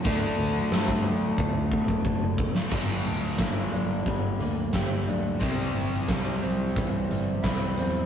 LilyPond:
<<
  \new Staff \with { instrumentName = "Clean electric guitar" } { \time 4/4 \key g \dorian \tempo 4 = 89 r1 | g,4 bes8 d'8 g8 bes8 g'8 d'8 | c4 g8 c'8 e8 g8 e'8 c'8 | }
  \new Staff \with { instrumentName = "Overdriven electric guitar" } { \clef bass \time 4/4 \key g \dorian <d a d'>1 | <g, d g>1 | <c g c'>1 | }
  \new Staff \with { instrumentName = "Fingered electric bass" } { \clef bass \time 4/4 \key g \dorian d,8 d,8 g,4 d,4 fis,,4 | g,,8 d,8 g,,8 g,,8 g,,8 d,8 g,,8 d,8 | c,8 g,,8 c,8 c,8 c,8 g,,8 c,8 e,8 | }
  \new DrumStaff \with { instrumentName = "Drums" } \drummode { \time 4/4 <hho bd>8 hho8 <hho sn>16 bd16 hho8 bd8 bd16 bd16 bd8 bd16 sn16 | <cymc bd>8 hh8 <hh bd sn>8 hh8 <hh bd>8 hh8 <hh bd sn>8 hh8 | <hh bd>8 hh8 <hh bd sn>8 hh8 <hh bd>8 hh8 <hh bd sn>8 <hh sn>8 | }
>>